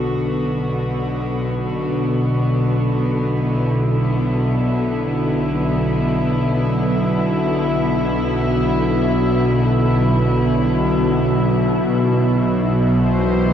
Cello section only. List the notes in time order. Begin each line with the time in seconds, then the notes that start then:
Already playing: D3 B3 F#4
3.39 E4
11.87 B2
13.00 C5
13.19 E3
13.24 G4